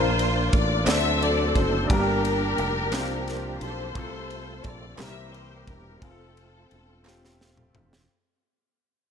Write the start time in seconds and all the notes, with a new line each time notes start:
Already playing: A#1 A#3 D4 F4 A#4 C5
0.19 ride
0.53 A1 D5, kick, ride
0.85 D2 D3 F#3 A3 C4 D4 F#4 A4 C5 D5 E5, clap, ride
0.89 snare
1.22 D5, ride
1.55 F#1 C5, kick, ride
1.88 G1 G2 A#3 D4 G4 A#4, kick, ride
1.93 A#4
2.25 ride
2.58 F1, ride
2.91 C2 F3 A#3 C4 D4 E4 G4 C5, snare, clap, ride
2.99 F4
3.28 snare, ride
3.61 B1 F4 A4 C5, ride
3.94 C2 C3 A3 C4 F4, kick, ride
3.99 A4
4.30 ride
4.64 A#1 D5, kick, ride
4.97 C2 C3 E3 G3 A#3 C4 D#4 G4 A#4 E5, snare, clap, ride
5.01 A#4
5.06 E4
5.32 C5, ride
5.67 E1 A#4, kick, ride
6.00 F1 A3 C4 F4 A4, kick, ride
6.04 G#4
6.11 A4
6.37 ride
6.71 E1, ride
7.04 C4 F4 G4, snare, clap
7.25 snare
7.41 snare
7.57 mid tom
7.75 E1, floor tom
7.93 snare